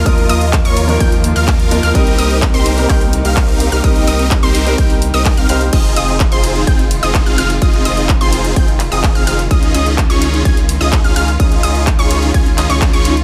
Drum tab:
CC |----------------|----------------|----------------|x---------------|
RD |x---x---x---x---|x---x---x---x---|x---x---x---x---|x-x-x-x-x-x-x-x-|
HH |xxoxxxoxxxoxxxox|xxoxxooxxxoxxxox|xxoxxxoxxooxxxox|xxoxxooxxxoxxxox|
CP |----x-------x---|----x---x---x---|----x-------x---|----x-------x---|
BD |o---o---o---o---|o---o---o---o---|o---o---o---o---|o---o---o---o---|

CC |----------------|----------------|----------------|
RD |x-x-x-x-x-x-x-x-|x-x-x-x-x-x-x-x-|x-x-x-x-x-x-x-x-|
HH |xxoxxxoxxxoxxxox|xxoxxooxxxoxxxox|xxoxxxoxxxoxxxox|
CP |----x-----x-x---|----x-------x---|----x-----x-x---|
BD |o---o---o---o---|o---o---o---o---|o---o---o---o---|